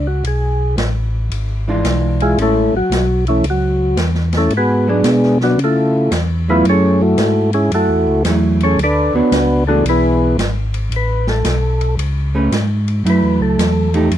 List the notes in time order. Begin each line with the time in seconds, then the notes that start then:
Already playing: C#2
0.07 F#4
0.24 B1 G#4, ride
0.77 A1, snare, hi-hat pedal, ride
1.30 G#1, ride
1.68 E3 G#3 D4 F4
1.84 B1, snare, hi-hat pedal, ride
2.20 G#3 E4 F4 G#4, ride
2.37 A1 G#3 C#4 E4, ride
2.42 A3 C#4 E4 A4
2.73 A1 F#4
2.77 F#3
2.90 B1, snare, hi-hat pedal, ride
3.27 E3 A3 C#4 E4, ride
3.43 C#2, ride
3.50 F#3 F#4
3.96 E2, snare, hi-hat pedal, ride
4.15 snare
4.33 snare, ride
4.37 A3 C#4 E4 A4
4.50 G#2, ride
4.57 B3 F#4 G#4 B4
4.87 F#3 G#3 B3 D4 G#4
5.04 B2, snare, hi-hat pedal, ride
5.23 snare
5.41 F#3 B3 D4 F#4, snare
5.57 C#3, ride
5.64 A3 E4 F4 A4
6.11 E2, snare, hi-hat pedal, ride
6.48 F#3 A3 B3 E4 F4 G#4 B4
6.64 F#2, ride
6.69 C#4 G#4 A4 C#5
7.01 A3 E4 F#4 A4
7.18 G#2, snare, hi-hat pedal, ride
7.53 G#3 C#4 E4 G#4, ride
7.71 F#2 A3 E4 F#4 A4, ride
7.89 E2
8.07 C#2
8.24 E2 F#3 A3 E4 G#4, snare, hi-hat pedal, ride
8.60 C#4 G#4 A4 C#5, ride
8.78 D2, ride
8.83 D4 A4 B4 D5
9.14 D2 B3 D4 F#4 A4 B4 C#5
9.31 C#2, snare, hi-hat pedal, ride
9.67 E3 A3 B3 D4 F#4 G#4 A4
9.84 B1, ride
9.89 B3 E4 G#4 B4
10.37 G#1, snare, hi-hat pedal, ride
10.74 ride
10.91 A1, ride
10.96 B4
11.27 A4, snare
11.44 B1, snare, hi-hat pedal, ride
11.81 ride
11.97 C#2, ride
12.35 A3 C#4 G#4 B4
12.51 G#2, snare, hi-hat pedal, ride
12.88 ride
13.05 F#2 F#3 A3 E4, ride
13.10 B4
13.22 E2
13.40 C#2 A4
13.58 E2, snare, hi-hat pedal, ride
13.94 F3 A3 D#4 G4, ride
14.11 F2, ride